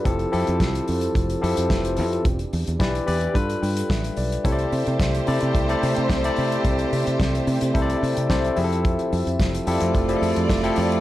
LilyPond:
<<
  \new Staff \with { instrumentName = "String section" } { \time 4/4 \key c \major \tempo 4 = 109 r1 | r1 | <a g' c''>1~ | <a g' c''>2.~ <a g' c''>8 r8 |
r4. <a f' d''>2~ <a f' d''>8 | }
  \new Staff \with { instrumentName = "Tine electric piano" } { \time 4/4 \key c \major << { r2. <b' e''>16 <g' c''>16 <e' a'>16 <c' f'>16~ | <c' f'>16 r2 r16 g''8 e''8 d''8 | r1 | r2. c''16 e''8. |
r1 | } \\ { <f c' e' g' a'>8 <f c' e' g' a'>4.~ <f c' e' g' a'>16 r16 <f c' e' g' a'>4. | r4 <e e' g' b' d''>8 <e e' g' b' d''>8 <g d' f' a' b'>4.~ <g d' f' a' b'>16 r16 | <c c' e' a' cis'' d''>4~ <c c' e' a' cis'' d''>16 r16 <c c' e' a' d''>8. <c c' e' a' d''>4 <c c' e' a' d''>8.~ | <c c' e' a' d''>4 r4 <c c' e' a' c'' d''>4 <c c' e' a' d''>8 <f c' e' g' gis' a'>8~ |
<f c' e' g' gis' a'>4~ <f c' e' g' gis' a'>16 r16 <f c' e' g' a'>8. <f c' e' g' gis' a'>4 <f c' e' g' a'>8. | } >> }
  \new Staff \with { instrumentName = "French horn section" } { \time 4/4 \key c \major <f e' a'>1 | <e d' g'>2 <g f' a' b'>2 | <c a e''>1~ | <c a e''>2.~ <c a e''>8 <f a'>8~ |
<f a'>1 | }
  \new Staff \with { instrumentName = "Fingered electric bass" } { \clef bass \time 4/4 \key c \major f,,8 f,16 f,16 c,8 f,8 f,,8 f,16 f,16 f,,8 f,8 | e,,8 e,16 e,16 b,,8 e,8 g,8 g,8 a,,8 b,,8 | c,8 c16 c16 c,8 c16 c16 c,8 c16 c16 c,8 c8 | c,8 c16 c16 c,8 c16 c16 c,8 c16 c16 c,8 f,8~ |
f,8 f,16 f,16 f,,8 f,16 f,16 f,,8 f,16 f,16 f,,8 f,8 | }
  \new DrumStaff \with { instrumentName = "Drums" } \drummode { \time 4/4 <hh bd>16 hh16 hho16 hh16 <hh bd sn>16 hh16 hho16 hh16 <hh bd>16 hh16 hho16 hh16 <hh bd sn>16 hh16 hho16 hh16 | <hh bd>16 hh16 hho16 hh16 <hh bd sn>16 hh16 hho16 hh16 <hh bd>16 hh16 hho16 hh16 <hh bd sn>16 hh16 hho16 hh16 | <hh bd>16 hh16 hho16 hh16 <hh bd sn>16 hh16 hho16 hh16 <hh bd>16 hh16 hho16 hh16 <hh bd sn>16 hh16 hho16 hh16 | <hh bd>16 hh16 hho16 hh16 <hh bd sn>16 hh16 hho16 hh16 <hh bd>16 hh16 hho16 hh16 <hh bd sn>16 hh16 hho16 hh16 |
<hh bd>16 hh16 hho16 hh16 <hh bd sn>16 hh16 hho16 hh16 <hh bd>16 hh16 hho16 hh16 <hh bd sn>16 hh16 hho16 hh16 | }
>>